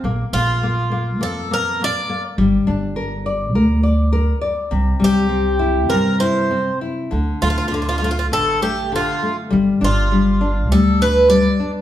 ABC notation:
X:1
M:4/4
L:1/16
Q:1/4=101
K:Gdor
V:1 name="Twelve-string acoustic guitar"
z2 F6 A2 B2 d3 z | z16 | z2 G6 B2 c4 z2 | z2 F/2 F/2 F/2 F/2 F/2 F/2 F/2 F/2 F/2 F/2 F/2 z/2 A2 G2 F3 z |
z2 F6 A2 =B2 d3 z |]
V:2 name="Nylon-string guitar"
B,2 B,2 B,2 B,2 B,2 B,2 B,2 B,2 | G,2 D2 B2 d2 B2 d2 B2 d2 | C,2 G,2 C2 E2 C2 E2 C2 E2 | D,2 A,2 D,2 A,2 D,2 A,2 D,2 A,2 |
G,2 D2 G,2 D2 G,2 D2 G,2 D2 |]
V:3 name="Upright bass" clef=bass
B,,,2 B,,,6 F,,8 | G,,,2 G,,,6 D,,8 | C,,2 C,,6 G,,8 | D,,2 D,,6 A,,,8 |
G,,,2 G,,,6 D,,8 |]